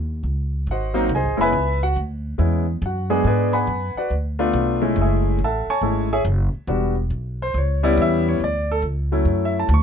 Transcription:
Already playing: D#2
0.23 C#2
0.67 G#1
0.71 F#4 C5 D#5 F#5
0.94 F#3 A#3 C4 D#4
1.09 C2
1.15 G#4 C5 D#5 G#5
1.23 G#1
1.37 F#1 G#3 B3 C#4 E4 G#5 B5
1.41 B4 E5
1.53 C#2
1.83 F#4 F#5
1.96 D2
2.38 E2 G#3 B3 C#4 E4
2.82 F#2 F#5
2.86 F#4
3.10 G#3 B3 D4 G#4
3.24 G#2 G#4 B4 D5 G#5
3.53 B4 F#5 G#5 B5
3.67 F#2
3.96 F#4 B4 D5 F#5, muted upright bass stroke
4.10 D2
4.39 A3 B3 D4 F4
4.53 B1
4.82 G#3 A3 C#4 E4
4.96 F#1
5.01 G#4 C#5 E5 G#5
5.39 A1
5.44 A4 E5 F#5 A5
5.67 C#5 G#5 A5 C#6, muted upright bass stroke
5.81 G#1 G#3 A3 C#4 E4
6.13 G#4 C#5 E5 G#5
6.25 F#1
6.54 muted upright bass stroke
6.67 E1 G3 B3 D4 F#4
7.10 B1
7.42 C5
7.54 C#2 C#5
7.83 G3 B3 C#4 E4 D5
7.97 E2
8.02 E5
8.29 C#5
8.40 D2 D5
8.72 A4
8.82 C#2
9.12 F#3 A3 C#4 E4
9.25 F#2
9.45 E5
9.59 A5
9.69 D2
9.74 C#6

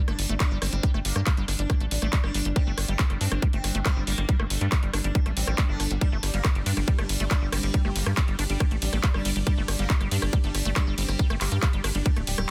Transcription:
Already playing: G3 D4, impact
0.08 G1 A3 D4, cross-stick, closed hi-hat
0.19 G1, open hi-hat
0.29 G1 A3, closed hi-hat
0.40 G3 D4, kick, cross-stick, clap, closed hi-hat
0.51 G1 G3
0.62 G1 G3 C4, cross-stick, open hi-hat
0.73 G1 G3, closed hi-hat
0.83 G3, kick, closed hi-hat
0.94 G1 A3, cross-stick
1.05 G1 A#3, open hi-hat
1.16 G2 G3, cross-stick, closed hi-hat
1.27 kick, clap, closed hi-hat
1.37 G1 G3, closed hi-hat
1.48 G1 D4, cross-stick, open hi-hat
1.59 G1 G3 D4, closed hi-hat
1.70 G3, kick, cross-stick, closed hi-hat
1.81 A1 A3, closed hi-hat
1.91 A1 D4, open hi-hat
2.02 A1 A3, cross-stick, closed hi-hat
2.13 G3, kick, clap, closed hi-hat
2.24 G1 G3 D4, cross-stick
2.34 G1 G3, open hi-hat
2.45 G1 G3, closed hi-hat
2.56 G3 C4, kick, cross-stick, closed hi-hat
2.67 G1 A3
2.78 G1, cross-stick, open hi-hat
2.88 G1 G3 A3, closed hi-hat
2.99 kick, clap, closed hi-hat
3.10 G1 G3, cross-stick, closed hi-hat
3.21 G2 C4 D4, open hi-hat
3.32 G1 G3, cross-stick, closed hi-hat
3.42 G3, kick, closed hi-hat
3.53 G1 A3 C4, closed hi-hat
3.64 G1, cross-stick, open hi-hat
3.75 G1 A3, closed hi-hat
3.86 G3 C4, kick, cross-stick, clap, closed hi-hat
3.96 G1 G3
4.07 G1 G3 A#3, open hi-hat
4.18 G1 G3, cross-stick, closed hi-hat
4.29 G3, kick, closed hi-hat
4.40 G1 A3, cross-stick
4.50 G1 A3, open hi-hat
4.61 G2 G3, closed hi-hat
4.72 kick, cross-stick, clap, closed hi-hat
4.83 G1 G3, closed hi-hat
4.93 G1 D4, cross-stick, open hi-hat
5.04 G1 G3 D4, closed hi-hat
5.15 G3, kick, closed hi-hat
5.26 A1 A3, cross-stick, closed hi-hat
5.37 A1 C4, open hi-hat
5.47 A1 G3, cross-stick, closed hi-hat
5.58 A3, kick, clap, closed hi-hat
5.69 G1 A3 D4
5.80 G1, cross-stick, open hi-hat
5.91 G1 A3, closed hi-hat
6.01 G3 D4 G4, kick, closed hi-hat
6.12 G1 A3
6.23 G1, cross-stick, open hi-hat, ride
6.34 G1 G3 A#3, closed hi-hat
6.45 kick, cross-stick, clap, closed hi-hat
6.55 G1 G3, closed hi-hat
6.66 G2 D4, open hi-hat, ride
6.77 G1 G3, cross-stick, closed hi-hat
6.88 G3, kick, closed hi-hat
6.98 G1 A3 D4, cross-stick, closed hi-hat
7.09 G1, open hi-hat, ride
7.20 G1 A3, closed hi-hat
7.31 G3, kick, cross-stick, clap, closed hi-hat
7.42 G1 G3
7.52 G1 G3 C4, cross-stick, open hi-hat, ride
7.63 G1 G3, closed hi-hat
7.74 G3, kick, closed hi-hat
7.85 G1 A3, cross-stick
7.96 G1 A#3, open hi-hat, ride
8.06 G2 G3, cross-stick, closed hi-hat
8.17 kick, clap, closed hi-hat
8.28 G1 G3, closed hi-hat
8.39 G1 D4, cross-stick, open hi-hat, ride
8.50 G1 G3 D4, closed hi-hat
8.60 G3, kick, cross-stick, closed hi-hat
8.71 A1 A3, closed hi-hat
8.82 A1 D4, open hi-hat, ride
8.93 A1 A3, cross-stick, closed hi-hat
9.04 G3, kick, clap, closed hi-hat
9.14 G1 G3 D4, cross-stick
9.25 G1 G3, open hi-hat, ride
9.36 G1 G3, closed hi-hat
9.47 G3 D4, kick, cross-stick, closed hi-hat
9.57 G1 A3
9.68 G1, cross-stick, open hi-hat, ride
9.79 G1 G3 A#3, closed hi-hat
9.90 kick, clap, closed hi-hat
10.01 G1 G3, cross-stick, closed hi-hat
10.11 G2 D4, open hi-hat, ride
10.22 G1 G3, cross-stick, closed hi-hat
10.33 G3, kick, closed hi-hat
10.44 G1 A3 D4, closed hi-hat
10.55 G1, cross-stick, open hi-hat, ride
10.65 G1 A3, closed hi-hat
10.76 G3 D4, kick, cross-stick, clap, closed hi-hat
10.87 G1 G3
10.98 G1 G3 C4, open hi-hat, ride
11.09 G1 G3, cross-stick, closed hi-hat
11.19 G3, kick, closed hi-hat
11.30 G1 A3, cross-stick, closed hi-hat
11.41 G1 A#3, clap, open hi-hat, ride
11.52 G2 G3, closed hi-hat
11.62 kick, cross-stick, clap, closed hi-hat
11.73 G1 G3, closed hi-hat
11.84 G1 D4, cross-stick, open hi-hat, ride
11.95 G1 G3 D4, closed hi-hat
12.06 G3, kick, closed hi-hat
12.16 D1 A3, cross-stick, closed hi-hat
12.27 D1 G4, open hi-hat, ride
12.38 D1 G3, cross-stick, closed hi-hat

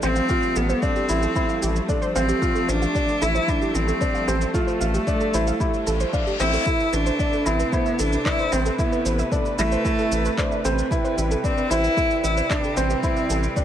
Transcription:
Already playing: F3 G3 A3
0.02 A1 C4 C5, shaker
0.16 F5, shaker
0.29 F4 G4, kick, shaker
0.43 shaker
0.56 A1 B3 A4, shaker
0.69 C5, shaker
0.82 C4 D4 F5, kick, shaker
0.96 G4, shaker
1.09 A1 E4, shaker
1.22 A4, shaker
1.35 E4 C5, kick, shaker
1.49 F5, shaker
1.62 A1 G4, shaker
1.76 shaker
1.89 D4 A4, kick, shaker
2.02 C5, shaker
2.15 A1 C4 F5, shaker
2.29 G4, shaker
2.42 F4, kick, shaker
2.55 A4, shaker
2.68 A1 D4 C5, shaker
2.82 F5, shaker
2.95 D4 G4, kick, shaker
3.09 shaker
3.21 A1 E4 A4, shaker
3.35 C5, shaker
3.48 D4 E4 F5, kick, shaker
3.62 G4, shaker
3.75 A1 C4, shaker
3.88 A4, shaker
4.01 D4 C5, kick, shaker
4.14 F5, shaker
4.28 A1 C4 G4, shaker
4.41 shaker
4.54 A3 F4 A4, kick, shaker
4.67 C5, shaker
4.81 A1 F5, shaker
4.94 G4, shaker
5.07 D4, kick, shaker
5.21 A4, shaker
5.34 A1 E4 C5, shaker
5.47 F5, shaker
5.60 E4 G4, kick, reverse cymbal, shaker
5.74 shaker
5.87 A1 A4, shaker
6.00 C5, shaker
6.13 D4 F5, kick, shaker
6.27 G4, shaker
6.40 A1 C4 E4, shaker
6.53 A4, shaker
6.66 C3 E4 A4 B4, kick, shaker
6.80 shaker
6.93 A1 D4 B4, shaker
7.06 C5, shaker
7.19 D4 E5, kick, shaker
7.33 A4, shaker
7.46 A1 C4 E4, shaker
7.59 B4, shaker
7.72 B3 E4 C5, kick, shaker
7.86 E5, shaker
7.99 A1 D4 A4, shaker
8.13 shaker
8.26 D4 E4 B4, kick, clap, shaker
8.39 C5, shaker
8.52 A1 C4 E5, shaker
8.66 A4, shaker
8.79 B3 E4, kick, shaker
8.92 B4, shaker
9.05 A1 C5, shaker
9.19 E5, shaker
9.32 D4 A4, kick, shaker
9.45 shaker
9.58 A1 A3 E4 B4, shaker
9.72 C5, shaker
9.85 E4 E5, kick, shaker
9.99 A4, shaker
10.12 A1, shaker
10.25 B4, shaker
10.38 D4 C5, kick, clap, shaker
10.52 E5, shaker
10.65 A1 C4 A4, shaker
10.79 shaker
10.91 G3 E4 B4, kick, shaker
11.04 C5, shaker
11.18 A1 E5, shaker
11.31 A4, shaker
11.44 C4 D4, kick, shaker
11.58 B4, shaker
11.70 A1 E4 C5, shaker
11.84 E5, shaker
11.97 E4 A4, kick, shaker
12.11 shaker
12.24 A1 E4 B4, shaker
12.37 C5, shaker
12.50 D4 E5, kick, clap, shaker
12.64 A4, shaker
12.77 A1 C4, shaker
12.90 B4, shaker
13.03 E4 C5, kick, shaker
13.17 E5, shaker
13.30 A1 A4, shaker
13.43 shaker
13.56 D4 B4, kick, shaker

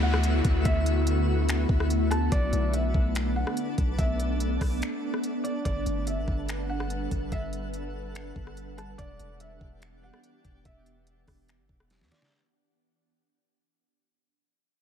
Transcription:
Already playing: D2 D3 A3 B3 E4 F#4 E5, downlifter
0.03 F#5
0.14 cross-stick
0.23 closed hi-hat
0.45 D2, kick, closed hi-hat
0.65 D2 E5, kick, closed hi-hat
0.86 closed hi-hat
1.07 closed hi-hat
1.49 finger snap, closed hi-hat
1.69 D2, kick
1.80 cross-stick
1.90 closed hi-hat
2.11 A5, cross-stick, closed hi-hat
2.32 B1 D4 A4 D5, kick, closed hi-hat
2.53 B1, closed hi-hat
2.73 E5, closed hi-hat
2.94 B1, kick
3.15 finger snap, closed hi-hat
3.36 F#5
3.47 cross-stick
3.57 closed hi-hat
3.78 B1, kick, closed hi-hat
3.98 B1 E5, kick, closed hi-hat
4.20 closed hi-hat
4.40 closed hi-hat
4.61 B1, kick, cross-stick, open hi-hat
4.82 finger snap, closed hi-hat
5.14 cross-stick
5.24 closed hi-hat
5.44 D5, closed hi-hat
5.65 G1 G3 B3 A4 B4 D5 F#5, kick, closed hi-hat
5.86 G1, closed hi-hat
6.07 E5, closed hi-hat
6.17 A1
6.28 G1, kick
6.49 finger snap, closed hi-hat
6.70 F#5
6.80 cross-stick
6.90 closed hi-hat
7.11 G1, kick, closed hi-hat
7.32 G1 E5, kick, closed hi-hat
7.53 closed hi-hat
7.74 closed hi-hat
8.15 finger snap, closed hi-hat
8.36 G1, kick
8.47 cross-stick
8.57 closed hi-hat
8.78 A5, cross-stick, closed hi-hat
8.98 E1 E3 B3 D4 G4 D5, kick, closed hi-hat
9.19 E1, closed hi-hat
9.40 E5, closed hi-hat
9.61 E1, kick
9.82 finger snap, closed hi-hat
10.03 F#5
10.14 cross-stick
10.24 closed hi-hat
10.45 E1, kick, closed hi-hat
10.65 E1 E5, kick, closed hi-hat
10.86 closed hi-hat
11.07 closed hi-hat
11.27 E1, kick, cross-stick, open hi-hat
11.48 finger snap, closed hi-hat
11.59 G1
11.69 E1, kick
11.80 cross-stick
11.90 snare, closed hi-hat
12.01 E2, snare
12.11 D5, snare, closed hi-hat
12.22 snare

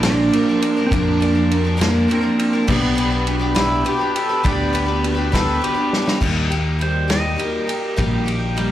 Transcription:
Already playing: A#1 A#2 F3 A#3 D4 F4 A#4
0.03 A#2 D3 F3 A#3 D4 F4 A#4, snare, ride
0.32 F3 A#3 D4 F4 A#4, ride
0.49 F3 A#3 D4 A#4
0.61 A#3 D4 F4 A#4, ride
0.77 F3 A#3 D4 A#4
0.86 C4
0.91 F2 A#2 D3 F3 A#3 D4 F4 A#4, kick, ride
1.20 F3 A#3 D4 F4 A#4, ride
1.35 F3 A#3 D4 A#4
1.51 A#3 D4 F4 A#4, ride
1.64 F3 A#3 D4 A#4
1.77 A#2 D3 F3 A#3 D4 A#4
1.81 A#3 F4, snare, ride
2.08 F3 A#3 D4 F4 A#4, ride
2.13 C4
2.21 F3 A#3 D4 A#4
2.38 A#3 C4 D4 F4 A#4, ride
2.53 F3 A#3 D4 A#4
2.67 B1 B3 D4 G4 B4, kick, crash
2.95 B3 D4 G4 B4, ride
3.10 D4 G4 B4
3.27 B3 D4 G4 B4, ride
3.39 D4 G4 B4
3.55 B3 D4 G4 B4, snare, ride
3.60 D4 E4
3.84 B3 D4 G4 B4, ride
3.89 G4
3.99 D4 G4 B4
4.15 D4 G4 B4, ride
4.19 A4
4.29 D4 G4 B4
4.43 D2 B3 D4 G4 B4 D5, kick, ride
4.73 B3 D4 G4 B4, ride
4.87 D4 G4 B4
5.04 B3 D4 G4 B4, ride
5.15 D4 G4 B4
5.32 B3 D4 G4 A4 B4, kick, snare, ride
5.38 D4
5.62 B3 D4 G4 B4, ride
5.75 D4 G4 B4
5.93 D4 G4 B4, snare
6.06 D4 G4 B4, snare
6.20 D#2 D#3 G3 A#3 D#4 G4 A#4, kick, crash
6.50 A#3 D#4 G4, ride
6.79 G3 A#3 D#4 G4 C5, ride
7.08 D#3 G3 A#3 D#4 G4 D#5, snare, ride
7.36 G3 A#3 D#4 G4 A#4, ride
7.67 A#3 D#4 G4, ride
7.97 A#1 D#3 G3 A#3 D#4 G4, kick, ride
8.26 A#3 D#4 G4, ride
8.56 G3 A#3 D#4 G4, ride

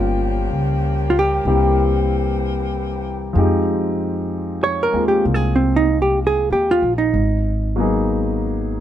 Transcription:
Already playing: G1 F3 G3 A#3 C#4 F4 G4 G5
0.50 C#2
1.10 F4
1.19 G4
1.45 C2 E3 G3 A#3 C4 E4 G4
3.33 F2 F3 G#3 C4 D#4
3.38 G4
4.64 C#5
4.83 A#4
4.92 D#2 G#3 A#3 C4 F4
5.08 G4
5.25 C2
5.34 G#4
5.56 C4
5.76 D#4
6.02 G4
6.27 G#4
6.50 D#2 G4
6.71 F4
6.82 A#1
6.98 D#4
7.14 G#1
7.76 F#3 A#3 B3 D#4
7.80 G#4

